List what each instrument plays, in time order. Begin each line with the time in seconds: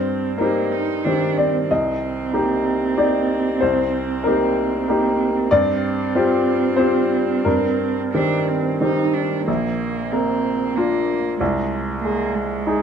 Already playing: grand piano G2 C5, cello C4
0.38 cello A#3, grand piano C4 D#4 G4 A#4
0.72 cello D#4
1.04 grand piano D#3 C4 G4, cello D4
1.38 cello C4, grand piano D5
1.69 grand piano C2 D#5, cello C4
2.33 grand piano A#3 D#4 G4
2.97 grand piano A#3 D#4 G4 D5
3.61 grand piano C2 C5
4.24 grand piano A#3 D#4 G4 A#4
4.88 grand piano A#3 D#4 G4
5.51 grand piano G2 D5, cello C4
6.15 grand piano C4 F4 G4
6.76 grand piano C4 F4 G4 C5
7.45 grand piano G2 A#4
8.13 grand piano D#3 C4 G4, cello D4
8.48 cello C4
8.81 grand piano D#3 C4 G4, cello D#4
9.14 cello D4
9.47 grand piano A#1, cello A#3
10.11 grand piano A#3, cello C4
10.76 cello A#3, grand piano D4 F4
11.39 grand piano C2, cello G#3
12.03 grand piano G#3, cello A#3
12.34 cello G#3
12.67 grand piano D#4 G#4